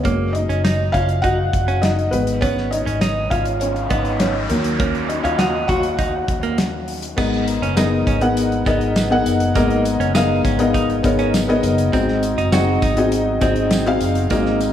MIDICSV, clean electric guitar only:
0, 0, Header, 1, 2, 480
1, 0, Start_track
1, 0, Tempo, 594059
1, 40, Time_signature, 4, 2, 24, 8
1, 11901, End_track
2, 0, Start_track
2, 0, Title_t, "Clean electric guitar"
2, 0, Program_c, 0, 27
2, 41, Note_on_c, 0, 58, 81
2, 268, Note_off_c, 0, 58, 0
2, 399, Note_on_c, 0, 61, 57
2, 513, Note_off_c, 0, 61, 0
2, 521, Note_on_c, 0, 63, 78
2, 748, Note_off_c, 0, 63, 0
2, 761, Note_on_c, 0, 61, 65
2, 874, Note_off_c, 0, 61, 0
2, 1000, Note_on_c, 0, 63, 71
2, 1113, Note_off_c, 0, 63, 0
2, 1357, Note_on_c, 0, 61, 60
2, 1472, Note_off_c, 0, 61, 0
2, 1957, Note_on_c, 0, 59, 91
2, 2186, Note_off_c, 0, 59, 0
2, 2314, Note_on_c, 0, 61, 63
2, 2430, Note_off_c, 0, 61, 0
2, 2436, Note_on_c, 0, 63, 80
2, 2665, Note_off_c, 0, 63, 0
2, 2676, Note_on_c, 0, 61, 67
2, 2791, Note_off_c, 0, 61, 0
2, 3156, Note_on_c, 0, 59, 71
2, 3496, Note_off_c, 0, 59, 0
2, 3879, Note_on_c, 0, 58, 84
2, 4107, Note_off_c, 0, 58, 0
2, 4238, Note_on_c, 0, 61, 59
2, 4353, Note_off_c, 0, 61, 0
2, 4358, Note_on_c, 0, 63, 80
2, 4587, Note_off_c, 0, 63, 0
2, 4596, Note_on_c, 0, 66, 68
2, 4712, Note_off_c, 0, 66, 0
2, 4837, Note_on_c, 0, 63, 72
2, 4952, Note_off_c, 0, 63, 0
2, 5197, Note_on_c, 0, 58, 61
2, 5312, Note_off_c, 0, 58, 0
2, 5800, Note_on_c, 0, 59, 101
2, 6028, Note_off_c, 0, 59, 0
2, 6160, Note_on_c, 0, 61, 67
2, 6274, Note_off_c, 0, 61, 0
2, 6282, Note_on_c, 0, 63, 84
2, 6509, Note_off_c, 0, 63, 0
2, 6521, Note_on_c, 0, 61, 68
2, 6635, Note_off_c, 0, 61, 0
2, 7002, Note_on_c, 0, 59, 75
2, 7340, Note_off_c, 0, 59, 0
2, 7722, Note_on_c, 0, 58, 86
2, 7950, Note_off_c, 0, 58, 0
2, 8081, Note_on_c, 0, 61, 67
2, 8195, Note_off_c, 0, 61, 0
2, 8199, Note_on_c, 0, 63, 88
2, 8429, Note_off_c, 0, 63, 0
2, 8441, Note_on_c, 0, 61, 71
2, 8556, Note_off_c, 0, 61, 0
2, 8680, Note_on_c, 0, 63, 78
2, 8795, Note_off_c, 0, 63, 0
2, 9041, Note_on_c, 0, 61, 65
2, 9156, Note_off_c, 0, 61, 0
2, 9644, Note_on_c, 0, 60, 101
2, 9872, Note_off_c, 0, 60, 0
2, 10002, Note_on_c, 0, 63, 73
2, 10117, Note_off_c, 0, 63, 0
2, 10124, Note_on_c, 0, 66, 81
2, 10352, Note_off_c, 0, 66, 0
2, 10365, Note_on_c, 0, 63, 73
2, 10478, Note_off_c, 0, 63, 0
2, 10844, Note_on_c, 0, 60, 81
2, 11183, Note_off_c, 0, 60, 0
2, 11562, Note_on_c, 0, 58, 86
2, 11791, Note_off_c, 0, 58, 0
2, 11901, End_track
0, 0, End_of_file